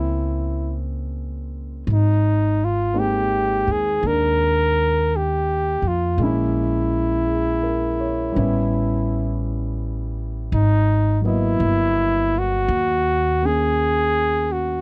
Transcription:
0.00 1.83 C#2 medium
0.00 1.85 G#3 soft
0.00 1.86 A#3 soft
0.00 1.87 C4 soft
0.00 1.89 C#4 soft
0.00 0.78 E4 medium
0.00 1.91 E4 soft
1.87 3.64 G#1 medium
1.92 2.66 D#4 medium
2.65 3.01 F4 medium
2.94 6.17 G#3 soft
2.94 4.00 A#3 soft
2.94 6.21 C4 soft
2.94 6.21 D#4 soft
2.99 3.73 G4 medium
3.67 4.01 D#2 soft
3.72 4.08 G#4 medium
4.02 5.80 D#2 medium
4.02 6.20 A#3 soft
4.02 6.22 D4 soft
4.07 5.18 A#4 medium
5.16 5.89 G4 medium
5.82 6.17 F2 medium
5.87 6.24 F4 medium
6.18 8.32 A#1 medium
6.18 8.37 G#3 soft
6.18 8.38 A#3 soft
6.23 8.35 C#4 soft
6.23 9.47 E4 medium
6.23 8.36 E4 medium
7.28 7.97 G#4 soft
7.63 8.20 A#4 soft
8.00 8.57 C#5 soft
8.32 10.51 G3 soft
8.32 10.52 B3 soft
8.36 10.49 A1 medium
8.36 10.54 C#4 soft
8.36 10.54 E4 medium
10.52 11.57 G#1 medium
10.52 11.22 D#4 medium
11.21 14.81 F#3 soft
11.21 13.41 A#3 soft
11.21 14.81 B3 soft
11.26 12.40 E4 medium
11.26 14.81 D#5 soft
11.60 12.65 G1 medium
12.38 13.47 F#4 medium
12.68 14.81 D#2 medium
13.42 14.81 A#3 soft
13.42 14.81 C#4 soft
13.42 14.54 G#4 medium
14.52 14.81 F#4 medium

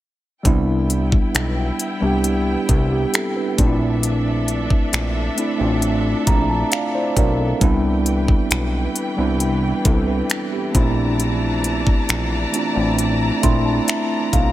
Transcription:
0.43 1.18 C2 loud
0.43 1.51 G3 loud
0.43 1.52 B3 medium
0.43 3.55 B3 medium
0.43 1.53 D4 medium
0.43 3.55 E4 medium
0.43 1.53 E4 loud
0.43 3.55 G5 medium
0.43 kick medium
0.43 closed hi-hat medium
0.90 closed hi-hat medium
1.12 kick medium
1.35 1.71 B1 loud
1.35 finger snap loud
1.35 closed hi-hat medium
1.79 closed hi-hat medium
2.00 2.56 C2 medium
2.00 2.47 G3 medium
2.00 2.48 B3 medium
2.00 2.48 D4 medium
2.00 2.49 G4 medium
2.24 closed hi-hat medium
2.69 3.05 C2 loud
2.69 kick medium
2.69 closed hi-hat medium
2.92 3.13 B3 medium
2.92 3.13 G4 medium
3.14 3.35 C4 medium
3.14 3.35 A4 medium
3.14 finger snap loud
3.14 closed hi-hat medium
3.36 3.58 D4 medium
3.36 3.79 B4 medium
3.57 4.68 A#1 loud
3.57 5.01 A3 medium
3.57 5.01 C4 medium
3.57 7.57 D4 medium
3.57 5.02 D4 medium
3.57 3.66 D#4 medium
3.57 7.57 A4 medium
3.57 7.57 E5 medium
3.57 kick loud
3.57 closed hi-hat medium
3.67 5.06 E4 loud
4.03 closed hi-hat medium
4.48 closed hi-hat medium
4.70 kick medium
4.93 5.29 A#1 loud
4.93 finger snap loud
4.93 closed hi-hat medium
5.36 5.52 A3 medium
5.36 5.53 C4 medium
5.36 5.53 D4 medium
5.36 5.54 E4 medium
5.36 closed hi-hat medium
5.58 6.15 A1 medium
5.58 6.05 A3 medium
5.58 6.06 C4 medium
5.58 6.06 D4 medium
5.58 6.07 F4 medium
5.82 closed hi-hat medium
6.27 6.64 A#1 medium
6.27 6.48 A#5 medium
6.27 kick medium
6.27 closed hi-hat medium
6.50 6.70 A5 medium
6.72 6.94 F4 soft
6.72 6.93 D5 medium
6.72 6.93 F5 medium
6.72 finger snap loud
6.72 closed hi-hat medium
6.94 7.16 E4 medium
6.94 7.16 C5 medium
6.94 7.58 D5 medium
7.17 7.53 B1 loud
7.17 7.38 D4 medium
7.17 7.38 A#4 medium
7.17 kick medium
7.17 closed hi-hat medium
7.39 7.82 C4 medium
7.39 7.82 A4 medium
7.60 8.34 C2 loud
7.60 14.52 E3 medium
7.60 8.68 G3 loud
7.60 8.68 B3 medium
7.60 8.69 D4 medium
7.60 8.70 E4 loud
7.60 10.72 B4 medium
7.60 10.71 G5 medium
7.60 kick loud
7.60 closed hi-hat medium
8.06 closed hi-hat medium
8.28 kick medium
8.51 8.87 B1 medium
8.51 finger snap loud
8.51 closed hi-hat medium
8.96 closed hi-hat medium
9.16 9.73 C2 medium
9.16 9.63 G3 medium
9.16 9.40 B3 medium
9.16 9.41 D4 medium
9.16 9.42 E4 loud
9.40 closed hi-hat medium
9.85 10.22 C2 loud
9.85 10.07 C4 medium
9.85 10.07 A4 medium
9.85 kick medium
9.85 closed hi-hat medium
10.08 10.51 D4 medium
10.08 10.50 B4 medium
10.30 finger snap loud
10.30 closed hi-hat medium
10.52 10.95 B3 medium
10.52 10.95 G4 medium
10.73 11.84 A#1 loud
10.73 12.17 A3 medium
10.73 12.18 C4 medium
10.73 10.82 C#4 medium
10.73 12.19 E4 loud
10.73 14.52 D5 medium
10.73 14.52 A5 medium
10.73 14.52 A#5 medium
10.73 kick loud
10.73 closed hi-hat medium
10.82 12.22 D4 medium
11.20 closed hi-hat medium
11.64 closed hi-hat medium
11.87 kick medium
12.09 12.46 A#1 loud
12.09 finger snap loud
12.09 closed hi-hat medium
12.52 12.68 A3 medium
12.52 12.69 C4 medium
12.52 12.70 D4 medium
12.52 12.70 F4 medium
12.52 closed hi-hat medium
12.75 13.31 A1 medium
12.75 13.21 A3 medium
12.75 13.22 C4 medium
12.75 13.23 D4 medium
12.75 13.23 E4 medium
12.99 closed hi-hat medium
13.41 13.80 A#1 loud
13.41 14.34 A3 medium
13.41 14.35 C4 medium
13.41 14.36 D4 medium
13.41 14.36 E4 loud
13.41 13.64 C6 medium
13.41 kick medium
13.41 closed hi-hat medium
13.66 13.87 A5 medium
13.88 14.30 E5 medium
13.88 finger snap loud
13.88 closed hi-hat medium
14.33 14.52 B1 medium
14.33 14.52 F5 medium
14.33 kick medium
14.33 closed hi-hat medium

